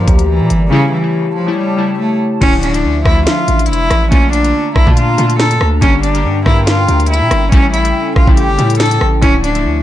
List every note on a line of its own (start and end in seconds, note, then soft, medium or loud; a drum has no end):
0.00 0.74 D3 loud
0.00 0.26 F3 medium
0.00 0.71 G3 medium
0.00 0.74 A#3 medium
0.00 0.70 G4 medium
0.00 0.73 G4 loud
0.00 0.28 A#4 medium
0.00 0.67 D5 medium
0.00 0.68 A#5 medium
0.08 0.42 D2 loud
0.08 kick loud
0.08 closed hi-hat medium
0.19 closed hi-hat medium
0.29 0.69 E3 medium
0.40 0.50 A#2 loud
0.50 0.71 G1 loud
0.50 closed hi-hat medium
0.71 0.94 C#3 medium
0.71 0.90 C#3 loud
0.71 0.95 G3 medium
0.71 0.95 A3 medium
0.71 0.95 E4 loud
0.71 2.40 G4 medium
0.71 2.40 C#5 medium
0.71 2.40 A5 medium
0.93 1.33 E3 medium
1.02 1.33 C#3 medium
1.02 1.34 G3 medium
1.02 1.34 A3 medium
1.02 1.34 E4 medium
1.36 1.54 F3 medium
1.46 1.70 C#3 medium
1.46 1.70 G3 medium
1.46 1.70 A3 medium
1.46 1.70 E4 medium
1.57 1.97 G3 medium
1.77 2.24 C#3 medium
1.77 2.24 G3 medium
1.77 2.25 A3 medium
1.77 2.25 E4 medium
1.99 2.17 A3 medium
2.41 2.86 D1 loud
2.41 2.64 D3 loud
2.41 2.65 F3 medium
2.41 4.10 F3 medium
2.41 2.65 A3 medium
2.41 2.60 C#4 loud
2.41 7.48 D4 medium
2.41 2.65 E4 loud
2.41 4.10 E5 medium
2.41 kick loud
2.41 closed hi-hat medium
2.41 crash loud
2.63 3.03 D4 medium
2.63 closed hi-hat medium
2.74 2.97 D3 medium
2.74 2.97 F3 medium
2.74 2.98 A3 medium
2.74 2.98 E4 medium
2.74 closed hi-hat medium
2.84 3.04 D2 loud
3.04 3.26 D2 loud
3.04 3.67 D3 medium
3.04 3.67 F3 medium
3.04 3.67 A3 medium
3.04 3.24 E4 medium
3.04 3.68 E5 medium
3.04 kick medium
3.04 cross-stick loud
3.27 3.67 F4 medium
3.27 snare loud
3.27 closed hi-hat medium
3.48 3.71 A1 loud
3.48 closed hi-hat medium
3.59 closed hi-hat medium
3.66 3.90 F1 loud
3.66 4.09 E4 medium
3.66 closed hi-hat medium
3.73 closed hi-hat medium
3.91 4.11 A1 loud
3.91 cross-stick loud
3.91 closed hi-hat medium
4.11 4.53 A#1 loud
4.11 4.35 D3 medium
4.11 4.35 A3 medium
4.11 4.35 A#3 medium
4.11 4.30 C#4 loud
4.11 4.35 F4 loud
4.11 5.80 A5 medium
4.11 7.49 A#5 medium
4.11 kick loud
4.11 closed hi-hat medium
4.33 4.73 D4 medium
4.33 closed hi-hat medium
4.44 4.74 D3 medium
4.44 4.75 A3 medium
4.44 4.75 A#3 medium
4.44 4.75 F4 medium
4.44 closed hi-hat medium
4.76 4.87 A#1 loud
4.76 4.94 E4 medium
4.76 kick medium
4.76 cross-stick loud
4.86 5.17 A#2 loud
4.86 5.10 D3 medium
4.86 5.10 A3 medium
4.86 5.10 A#3 medium
4.86 5.11 F4 medium
4.86 kick medium
4.97 5.37 F4 medium
4.97 closed hi-hat medium
5.18 5.59 A#2 loud
5.18 5.65 D3 medium
5.18 5.65 A3 medium
5.18 5.65 A#3 medium
5.18 5.66 F4 medium
5.18 closed hi-hat medium
5.30 closed hi-hat medium
5.39 5.58 A4 medium
5.39 snare loud
5.51 closed hi-hat medium
5.61 5.81 D2 loud
5.61 cross-stick loud
5.81 6.26 G1 loud
5.81 6.05 D3 loud
5.81 6.05 G3 medium
5.81 6.05 A#3 medium
5.81 6.00 C#4 loud
5.81 6.06 G4 loud
5.81 7.51 G5 medium
5.81 kick loud
5.81 closed hi-hat medium
6.03 6.43 D4 medium
6.03 closed hi-hat medium
6.14 6.37 D3 medium
6.14 6.38 G3 medium
6.14 6.38 A#3 medium
6.14 6.38 G4 medium
6.14 closed hi-hat medium
6.25 6.45 G2 loud
6.45 6.87 G2 loud
6.45 7.08 D3 medium
6.45 7.08 G3 medium
6.45 7.08 A#3 medium
6.45 6.64 E4 medium
6.45 7.09 A#4 medium
6.45 kick medium
6.45 cross-stick loud
6.67 7.07 F4 medium
6.67 snare loud
6.67 closed hi-hat medium
6.88 7.23 D2 loud
6.88 closed hi-hat medium
7.00 closed hi-hat medium
7.06 7.50 E4 medium
7.06 closed hi-hat medium
7.14 closed hi-hat medium
7.21 7.31 A#2 loud
7.31 7.51 G1 loud
7.31 cross-stick loud
7.31 closed hi-hat medium
7.52 7.93 A1 loud
7.52 7.75 C#3 medium
7.52 7.76 G3 medium
7.52 7.76 A3 medium
7.52 7.71 C#4 loud
7.52 9.21 C#4 medium
7.52 7.76 E4 loud
7.52 9.21 A4 medium
7.52 9.21 G5 medium
7.52 kick loud
7.52 closed hi-hat medium
7.73 8.13 E4 medium
7.73 closed hi-hat medium
7.83 8.14 C#3 medium
7.83 8.15 G3 medium
7.83 8.15 A3 medium
7.83 8.15 E4 medium
7.83 closed hi-hat medium
8.16 8.27 A1 loud
8.16 8.35 F4 medium
8.16 kick medium
8.16 cross-stick loud
8.27 8.50 A1 loud
8.27 8.51 C#3 medium
8.27 8.51 G3 medium
8.27 8.51 A3 medium
8.27 8.51 E4 medium
8.27 kick loud
8.37 8.78 G4 medium
8.37 closed hi-hat medium
8.49 8.58 G1 loud
8.58 9.00 A2 loud
8.58 9.05 C#3 medium
8.58 9.05 G3 medium
8.58 9.05 A3 medium
8.58 9.06 E4 medium
8.58 closed hi-hat medium
8.70 closed hi-hat medium
8.75 closed hi-hat medium
8.80 8.98 A4 medium
8.80 snare loud
8.80 closed hi-hat medium
8.86 closed hi-hat medium
8.91 closed hi-hat medium
9.01 9.22 A1 loud
9.01 cross-stick loud
9.22 9.67 D1 loud
9.22 9.45 D3 loud
9.22 9.46 F3 medium
9.22 9.83 F3 medium
9.22 9.46 A3 medium
9.22 9.41 C#4 loud
9.22 9.83 D4 medium
9.22 9.46 E4 loud
9.22 9.83 E5 medium
9.22 kick loud
9.22 closed hi-hat medium
9.44 9.83 D4 medium
9.44 closed hi-hat medium
9.54 9.78 D3 medium
9.54 9.78 F3 medium
9.54 9.78 A3 medium
9.54 9.79 E4 medium
9.54 closed hi-hat medium
9.65 9.83 D2 loud